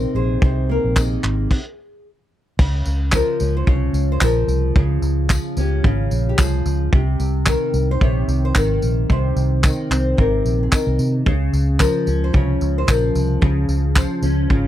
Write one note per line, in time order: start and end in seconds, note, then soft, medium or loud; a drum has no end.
0.00 0.41 C3 medium
0.00 0.96 D#3 medium
0.00 0.68 A#3 medium
0.00 1.57 C4 medium
0.00 0.15 A#4 medium
0.15 0.37 A#1 medium
0.15 2.07 G#4 medium
0.15 0.41 C5 medium
0.42 0.77 C2 loud
0.42 1.57 C3 medium
0.42 0.71 C5 medium
0.42 kick loud
0.69 1.57 A#3 medium
0.69 0.98 A#4 medium
0.84 1.16 A#1 medium
0.96 1.57 D#3 medium
0.96 1.75 G#4 medium
0.96 kick loud
0.96 clap medium
0.96 tambourine medium
1.23 1.46 G#1 medium
1.23 clap medium
1.51 kick loud
1.51 crash medium
2.59 2.81 C#2 loud
2.59 3.66 C#3 medium
2.59 kick loud
2.59 crash loud
2.86 3.21 C#2 medium
2.86 tambourine medium
3.12 4.21 F3 medium
3.12 3.56 A#4 medium
3.12 kick loud
3.12 clap loud
3.12 tambourine medium
3.40 3.63 C#2 medium
3.40 5.56 C#4 medium
3.40 tambourine medium
3.57 3.68 C5 medium
3.67 3.90 C2 medium
3.67 4.75 C#3 medium
3.67 4.12 C#5 medium
3.67 kick loud
3.93 4.16 C#2 medium
3.93 tambourine medium
4.12 4.22 C5 medium
4.21 4.44 A#1 medium
4.21 5.29 F3 medium
4.21 4.79 A#4 medium
4.21 kick loud
4.21 clap loud
4.21 tambourine medium
4.48 4.71 C2 medium
4.48 tambourine medium
4.76 4.98 C#2 loud
4.76 5.83 C#3 medium
4.76 5.54 G#4 medium
4.76 kick loud
5.02 5.37 C#2 medium
5.02 tambourine medium
5.30 6.37 F3 medium
5.30 kick loud
5.30 clap loud
5.30 tambourine medium
5.57 5.79 C#2 medium
5.57 6.99 C#4 medium
5.57 5.86 G4 medium
5.57 tambourine medium
5.84 6.07 G#1 medium
5.84 6.93 C#3 medium
5.84 6.25 F4 medium
5.84 kick loud
6.11 6.34 A#1 medium
6.11 tambourine medium
6.29 6.42 G4 medium
6.38 6.61 C2 medium
6.38 6.99 F3 medium
6.38 6.82 G#4 medium
6.38 kick loud
6.38 clap loud
6.38 tambourine medium
6.66 6.88 C#2 medium
6.66 tambourine medium
6.93 7.15 C2 loud
6.93 8.00 C3 medium
6.93 kick loud
7.20 7.54 C2 loud
7.20 tambourine medium
7.46 8.55 D#3 medium
7.46 7.91 A#4 medium
7.46 kick loud
7.46 clap loud
7.46 tambourine medium
7.74 7.96 C2 loud
7.74 tambourine medium
7.91 8.03 C5 loud
8.01 8.23 A#1 medium
8.01 9.09 C3 medium
8.01 8.45 C#5 medium
8.01 kick loud
8.28 8.50 C2 medium
8.28 tambourine medium
8.45 8.57 C5 medium
8.55 8.78 G#1 medium
8.55 9.63 D#3 medium
8.55 9.11 A#4 loud
8.55 kick loud
8.55 clap loud
8.55 tambourine medium
8.82 9.05 A#1 medium
8.82 tambourine medium
9.09 9.32 C2 loud
9.09 10.16 C3 medium
9.09 10.20 C5 medium
9.09 kick loud
9.36 9.71 C2 loud
9.36 tambourine medium
9.63 10.71 D#3 medium
9.63 kick loud
9.63 clap loud
9.63 tambourine medium
9.91 10.13 C2 loud
9.91 11.32 C4 medium
9.91 clap medium
9.91 tambourine medium
10.17 10.40 G#1 loud
10.17 11.26 C3 medium
10.17 10.62 A#4 medium
10.17 kick loud
10.45 10.67 A#1 medium
10.45 tambourine medium
10.63 10.74 G#4 medium
10.72 11.32 D#3 medium
10.72 11.12 A#4 medium
10.72 kick medium
10.72 clap loud
10.72 tambourine medium
10.87 10.97 C2 medium
10.99 11.21 C3 medium
10.99 tambourine medium
11.26 11.48 C#2 loud
11.26 12.32 C#3 medium
11.26 kick loud
11.53 11.88 C#2 medium
11.53 tambourine medium
11.79 12.86 F3 medium
11.79 12.23 A#4 medium
11.79 kick loud
11.79 clap medium
11.79 tambourine medium
12.06 12.29 C#2 medium
12.06 14.22 C#4 medium
12.06 tambourine medium
12.24 12.36 C5 medium
12.33 12.57 C2 medium
12.33 13.40 C#3 medium
12.33 12.78 C#5 medium
12.33 kick loud
12.61 12.84 C#2 loud
12.61 tambourine medium
12.78 12.90 C5 medium
12.87 13.11 A#1 loud
12.87 13.95 F3 medium
12.87 13.43 A#4 loud
12.87 kick loud
12.87 clap loud
12.87 tambourine medium
13.15 13.38 C2 medium
13.15 tambourine medium
13.41 13.64 C#2 loud
13.41 14.49 C#3 medium
13.41 14.52 G#4 loud
13.41 kick loud
13.68 14.03 C#2 medium
13.68 tambourine medium
13.96 14.68 F3 medium
13.96 kick loud
13.96 clap loud
13.96 tambourine medium
14.22 14.45 C#2 medium
14.22 14.68 C#4 medium
14.22 tambourine medium
14.50 14.68 G#1 medium
14.50 14.68 C#3 medium
14.50 14.68 F4 medium
14.50 kick loud